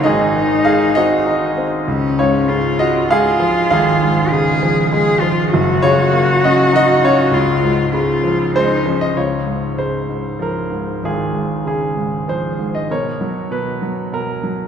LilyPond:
<<
  \new Staff \with { instrumentName = "Cello" } { \time 3/4 \key des \major \tempo 4 = 98 ees'2~ ees'8 r8 | des'4 f'4 f'4~ | f'4 aes'4 aes'8 f'8 | ges'2. |
f'4 f'4 ees'8 des'8 | r2. | r2. | r2. | }
  \new Staff \with { instrumentName = "Grand piano" } { \time 3/4 \key des \major << { ees''4 f''8 ees''4 r8 | r8 des''4 ees''8 f''4 | f''2 r4 | r8 des''4 ees''8 ees''8 des''8~ |
des''2 c''8. ees''16 | des''4 c''4 bes'4 | aes'4 aes'4 c''8. ees''16 | des''4 ces''4 bes'4 | } \\ { aes'4 aes'8 ges'4 r8 | r8 f'4 ges'8 aes'4 | aes'2 r4 | r8 f'4 ges'8 ges'8 f'8~ |
f'2 r4 | f'4. r4. | f'4. r4. | bes'4. r4. | } >> }
  \new Staff \with { instrumentName = "Grand piano" } { \clef bass \time 3/4 \key des \major <aes,, aes,>8 ees8 aes8 c'8 ees'8 c'8 | des,8 aes,8 des4 aes8 f8 | aes,,8 aes,8 des8 f8 aes8 f8 | <ges,, ges,>8 des8 bes8 des'8 ees'8 des'8 |
des,8 aes,8 des8 f8 aes8 f8 | des,8 aes,8 des8 aes,8 f8 aes,8 | aes,,8 aes,8 des8 aes,8 f8 aes,8 | ces8 ges8 ces8 ges8 ces8 ges8 | }
>>